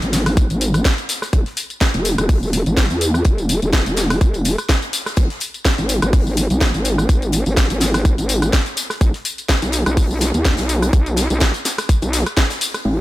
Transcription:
0.02 G#1, closed hi-hat, tambourine
0.13 snare, closed hi-hat, open hi-hat, tambourine
0.26 cross-stick, open hi-hat, tambourine
0.37 kick, closed hi-hat, tambourine
0.50 G#1, closed hi-hat, tambourine
0.61 closed hi-hat, open hi-hat, tambourine
0.74 cross-stick, closed hi-hat, tambourine
0.85 kick, snare, closed hi-hat, tambourine
0.98 closed hi-hat, tambourine
1.09 snare, closed hi-hat, open hi-hat, tambourine
1.22 cross-stick, snare, tambourine
1.33 E1, kick, closed hi-hat, tambourine
1.46 snare, closed hi-hat
1.57 closed hi-hat, open hi-hat, tambourine
1.70 closed hi-hat, tambourine
1.81 kick, snare, closed hi-hat, tambourine
1.94 E1, closed hi-hat, tambourine
2.05 closed hi-hat, open hi-hat, tambourine
2.18 E1, cross-stick, closed hi-hat, tambourine
2.29 kick, closed hi-hat, open hi-hat, tambourine
2.43 tambourine
2.53 closed hi-hat, open hi-hat, tambourine
2.66 G#1, closed hi-hat, tambourine
2.77 kick, snare, closed hi-hat, tambourine
2.90 E2, closed hi-hat, tambourine
3.01 closed hi-hat, open hi-hat, tambourine
3.14 cross-stick, tambourine
3.25 E1, kick, closed hi-hat, tambourine
3.38 closed hi-hat, tambourine
3.49 closed hi-hat, open hi-hat, tambourine
3.62 E1, closed hi-hat, tambourine
3.73 kick, snare, closed hi-hat, tambourine
3.86 E1, closed hi-hat, tambourine
3.96 snare, closed hi-hat, open hi-hat, tambourine
4.10 cross-stick, open hi-hat, tambourine
4.21 E1, kick, closed hi-hat, tambourine
4.34 closed hi-hat, tambourine
4.45 closed hi-hat, open hi-hat, tambourine
4.58 cross-stick, closed hi-hat, tambourine
4.69 kick, snare, closed hi-hat, tambourine
4.82 closed hi-hat, tambourine
4.93 snare, closed hi-hat, open hi-hat, tambourine
5.05 cross-stick, snare, tambourine
5.17 G#1, kick, closed hi-hat, tambourine
5.30 snare, closed hi-hat
5.40 closed hi-hat, open hi-hat, tambourine
5.54 closed hi-hat, tambourine
5.65 kick, snare, closed hi-hat, tambourine
5.78 G#1, closed hi-hat, tambourine
5.89 closed hi-hat, open hi-hat, tambourine
6.02 G#1, cross-stick, closed hi-hat, tambourine
6.13 kick, closed hi-hat, open hi-hat, tambourine
6.27 tambourine
6.37 closed hi-hat, open hi-hat, tambourine
6.50 B1, closed hi-hat, tambourine
6.61 kick, snare, closed hi-hat, tambourine
6.74 G#1, closed hi-hat, tambourine
6.85 closed hi-hat, open hi-hat, tambourine
6.98 cross-stick, tambourine
7.09 G#1, kick, closed hi-hat, tambourine
7.22 closed hi-hat, tambourine
7.32 closed hi-hat, open hi-hat, tambourine
7.46 G#1, closed hi-hat, tambourine
7.56 kick, snare, closed hi-hat, tambourine
7.70 G#1, closed hi-hat, tambourine
7.80 snare, closed hi-hat, open hi-hat, tambourine
7.94 cross-stick, open hi-hat, tambourine
8.05 kick, closed hi-hat, tambourine
8.18 G#1, closed hi-hat, tambourine
8.29 closed hi-hat, open hi-hat, tambourine
8.42 cross-stick, closed hi-hat, tambourine
8.53 kick, snare, closed hi-hat, tambourine
8.66 closed hi-hat, tambourine
8.76 snare, closed hi-hat, open hi-hat, tambourine
8.90 cross-stick, snare, tambourine
9.01 B1, kick, closed hi-hat, tambourine
9.14 snare, closed hi-hat
9.25 closed hi-hat, open hi-hat, tambourine
9.38 closed hi-hat, tambourine
9.48 kick, snare, closed hi-hat, tambourine
9.62 B1, closed hi-hat, tambourine
9.72 closed hi-hat, open hi-hat, tambourine
9.86 B1, cross-stick, closed hi-hat, tambourine
9.97 kick, closed hi-hat, open hi-hat, tambourine
10.11 tambourine
10.21 snare, closed hi-hat, open hi-hat, tambourine
10.34 D#2, closed hi-hat, tambourine
10.45 kick, snare, closed hi-hat, tambourine
10.57 B1, snare, closed hi-hat, tambourine
10.69 open hi-hat, tambourine
10.82 cross-stick, closed hi-hat, tambourine
10.93 B1, kick, closed hi-hat, tambourine
11.06 closed hi-hat, tambourine
11.17 snare, closed hi-hat, open hi-hat, tambourine
11.30 B1, closed hi-hat, tambourine
11.40 kick, snare, closed hi-hat, tambourine
11.54 closed hi-hat, tambourine
11.65 snare, closed hi-hat, open hi-hat, tambourine
11.78 cross-stick, open hi-hat, tambourine
11.89 kick, closed hi-hat, tambourine
12.02 B1, closed hi-hat, tambourine
12.13 snare, closed hi-hat, open hi-hat, tambourine
12.26 cross-stick, closed hi-hat, tambourine
12.37 kick, snare, closed hi-hat, tambourine
12.50 snare, closed hi-hat, tambourine
12.61 open hi-hat, tambourine
12.74 cross-stick, closed hi-hat, tambourine
12.85 G#1

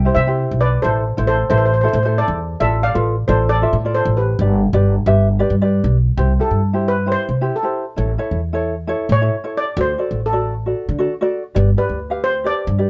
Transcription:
Already playing: E5 G5
0.05 E4 G4 C5
0.15 C3 C5 E5
0.27 E4 G4 C5
0.51 B1
0.61 B4 D5
0.82 A1 E4 A4 C5
1.17 A1 E4 A4 C5
1.27 A4 C5
1.50 A1 E4 A4 B4 C5
1.58 C5
1.65 C5
1.74 C5
1.81 E4 A4 C5
1.85 C5
1.93 A2 C5
2.03 E4 A4 C5
2.18 A4 D5
2.28 E2
2.60 A1 F4 A4 D5 E5
2.83 D5 F5
2.94 A1 F4 A4 B4
3.28 A1 F4 A4 C5 D5
3.49 A4 D5
3.62 F4 A4 E5
3.73 A2
3.85 F4 A4 D5
3.95 A4 C5
4.05 A1
4.17 G4 B4
4.39 G1 G4 B4 D5
4.73 G1 G4 B4 D5
5.06 G1 G4 B4 E5
5.39 G4 B4 D5
5.50 G2
5.61 G4 B4 D5
5.84 B1
6.17 C2 E4 G4 C5
6.39 E4 G4 A4
6.51 G2
6.73 E4 G4 C5
6.88 B4
7.06 E4 G4 C5
7.12 C5
7.29 C3
7.41 E4 G4 C5
7.56 A4
7.63 E4 G4 C5
7.96 A1 E4 A4 C#5
8.18 E4 A4 C#5
8.31 E2
8.53 E4 A4 C#5
8.87 E4 A4 C#5
9.09 A2 C#5
9.21 E4 A4 C#5
9.44 E4 A4 C#5
9.57 D5
9.77 D2 F#4 A4 D5
9.81 C5
9.98 F#4 A4 D5
10.11 A1
10.26 A4
10.33 F#4 A4 D5
10.66 F#4 A4 D5
10.89 D3
10.99 F#4 A4 D5
11.21 F#4 A4 D5
11.55 G1 G4 B4 D5
11.77 G4 B4 D5
11.89 D2
12.10 G4 B4 F5
12.24 C5
12.44 G4 B4 D5
12.67 G2
12.78 G4 B4 D5

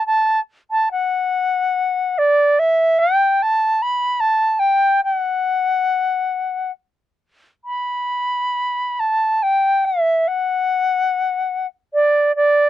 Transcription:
0.07 A5
0.71 A5
0.92 F#5
2.18 D5
2.59 E5
2.99 G5
3.42 A5
3.82 B5
4.20 A5
4.59 G5
5.04 F#5
7.65 B5
9.00 A5
9.43 G5
9.85 E5
10.28 F#5
11.94 D5
12.36 D5

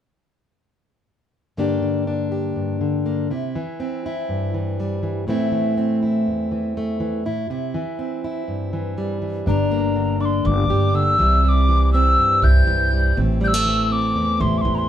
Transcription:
1.57 G2 D3 A#3 D4 G4
1.82 D3
2.07 D4
2.32 G4
2.56 G2
2.81 D3
3.06 A#3
3.31 C3 E4
3.55 E3
3.80 C4
4.06 E4
4.29 G2
4.54 E3
4.80 G3
5.03 E3
5.27 A2 E3 A3 C4 E4
5.52 E3
5.78 C4
6.03 E4
6.27 E2
6.51 E3
6.77 A3
7.00 E3
7.25 A2 E4
7.50 C3 E4
7.74 E3
7.99 C4
8.24 E4
8.48 G2
8.73 E3
8.98 G3
9.22 E3
9.46 G1 G2 D4 A#5
9.71 A#3
9.96 D3
10.20 D4 D6
10.25 C6
10.45 G1 G2 D6
10.70 G1 G4
10.94 D3 E6
11.19 C2 C3 E3 G3 C4 E4
11.44 G3 E6
11.49 D6
11.69 E3
11.93 C4 E6
12.18 G2
12.42 C2 E4 G6
12.67 C2 E3
12.93 G3
13.17 A1 A2 C4
13.41 G3 G6
13.48 E6
13.54 A3
13.65 E3
13.91 C4 D6
14.15 E2
14.40 A1 E4 C6
14.58 C6 D6
14.65 A1 E3
14.75 A#5 C6

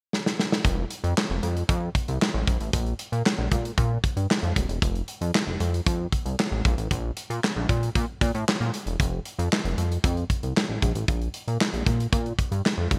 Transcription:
0.13 snare
0.26 snare
0.39 snare
0.52 snare
0.65 F1, kick, closed hi-hat
0.91 closed hi-hat
1.04 F2, closed hi-hat
1.18 snare, clap
1.30 F1
1.43 F2, closed hi-hat
1.57 closed hi-hat
1.69 F2, kick, closed hi-hat
1.95 kick, closed hi-hat
2.08 C2, closed hi-hat
2.22 snare, clap
2.34 A1
2.47 A#1, kick, closed hi-hat
2.60 A1, closed hi-hat
2.73 A#1, kick, closed hi-hat
2.86 closed hi-hat
2.99 closed hi-hat
3.12 A#2, closed hi-hat
3.26 snare, clap
3.38 A#1
3.52 A#2, kick, closed hi-hat
3.65 closed hi-hat
3.78 A#2, kick, closed hi-hat
4.04 kick, closed hi-hat
4.17 G2, closed hi-hat
4.31 snare, clap
4.43 F2, closed hi-hat
4.56 D#1, kick, closed hi-hat
4.69 E1, closed hi-hat
4.82 F1, kick, closed hi-hat
4.95 closed hi-hat
5.08 closed hi-hat
5.21 F2, closed hi-hat
5.35 snare, clap
5.47 F1
5.60 F2, closed hi-hat
5.74 closed hi-hat
5.86 F2, kick, closed hi-hat
6.12 kick, closed hi-hat
6.26 C2, closed hi-hat
6.40 snare, clap
6.52 A1
6.65 A#1, kick, closed hi-hat
6.78 A1, closed hi-hat
6.91 A#1, kick, closed hi-hat
7.17 closed hi-hat
7.30 A#2, closed hi-hat
7.44 snare, clap
7.56 A#1
7.69 A#2, kick, closed hi-hat
7.83 closed hi-hat
7.95 A#2, kick, closed hi-hat
8.21 A#2, kick, closed hi-hat
8.34 A2, closed hi-hat
8.49 snare, clap
8.60 A#2, closed hi-hat
8.74 closed hi-hat
8.86 E1, closed hi-hat
9.00 F1, kick, closed hi-hat
9.25 closed hi-hat
9.39 F2, closed hi-hat
9.53 snare, clap
9.65 F1, closed hi-hat
9.78 F2, closed hi-hat
9.92 closed hi-hat
10.04 F2, kick, closed hi-hat
10.17 closed hi-hat
10.30 kick, closed hi-hat
10.43 C2, closed hi-hat
10.57 snare, clap
10.69 A1
10.82 A#1, kick, closed hi-hat
10.95 A1, closed hi-hat
11.08 A#1, kick, closed hi-hat
11.21 closed hi-hat
11.34 closed hi-hat
11.48 A#2, closed hi-hat
11.61 snare, clap
11.73 A#1, closed hi-hat
11.86 A#2, kick, closed hi-hat
12.00 closed hi-hat
12.12 A#2, kick, closed hi-hat
12.26 closed hi-hat
12.39 kick, closed hi-hat
12.51 G2, closed hi-hat
12.66 snare, clap
12.78 F2
12.91 D#1, kick, closed hi-hat

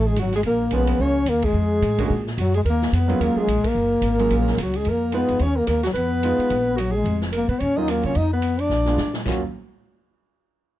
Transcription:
Already playing: A1 A3
0.06 G#3 G#4
0.16 G#1 F#4, hi-hat pedal, ride
0.21 F#3
0.32 G#4, snare, ride
0.37 G#3
0.43 A#1 A#3 A#4, ride
0.71 B1 F3 G#3 A#3 B3 C#4 F4, hi-hat pedal, ride
0.75 B4
0.87 ride
0.99 C#2 C#4 C#5
1.26 D#2 A#3 A#4, hi-hat pedal, ride
1.42 G#3 G#4, kick, ride
1.53 F2
1.82 A2, hi-hat pedal, ride
1.98 D3 G#3 A#3 C#4 F#4, kick, ride
2.10 A#2
2.27 snare
2.38 F#2 F#3 F#4, hi-hat pedal, ride
2.54 G#3 G#4, ride
2.65 D#2 A#4, ride
2.70 A#3
2.82 snare
2.92 F2 B3 B4, hi-hat pedal, ride
3.08 F#3 G#3 A#3 C#4 F4, ride
3.20 D#2 A#3 A#4, ride
3.36 G#4, muted upright bass stroke
3.40 G#3
3.47 A#1, hi-hat pedal, ride
3.64 A#4, muted upright bass stroke, kick, ride
3.69 A#3
3.75 F#1
4.01 G#1, hi-hat pedal, ride
4.19 F#3 G#3 A#3 C#4 F4, ride
4.30 A#1, ride
4.47 snare
4.58 C#2, hi-hat pedal, ride
4.63 F#3 F#4
4.74 G#4, ride
4.80 G#3
4.85 F2 A#4, ride
4.91 A#3
5.12 G#3 B3 D#4 F4 B4, hi-hat pedal, ride
5.17 B3
5.28 F2, ride
5.39 D#2 C#5, ride
5.44 C#4
5.56 A#3 A#4
5.67 D#2 A#3 A#4, cross-stick, hi-hat pedal, ride
5.83 F#3 F#4, snare, ride
5.94 F2 B4, ride
5.98 B3
6.23 G#3 B3 D#4 F4, hi-hat pedal, ride
6.38 muted upright bass stroke, ride
6.50 A#1, ride
6.77 F#3 F#4, cross-stick, hi-hat pedal, ride
6.91 G#3 G#4
7.04 F1, ride
7.21 snare
7.32 A#4, hi-hat pedal, ride
7.36 A#3
7.48 A#2 B3 B4, ride
7.59 D#2 C#4 C#5, ride
7.77 F#3 A#3 C#4 D#4 F4 D#5
7.88 A#3 A#4, cross-stick, hi-hat pedal, ride
8.03 C3 C#5, ride
8.08 C#4
8.15 F2 D#4 D#5, ride
8.33 B3 B4
8.42 hi-hat pedal, ride
8.59 D4 D5, ride
8.70 A#1, snare
8.86 G#3 B3 D4 F4, snare
8.97 A#2, snare, hi-hat pedal
9.14 snare
9.25 D#2 F#3 A#3 C#4 F4 F#4, kick, snare, crash

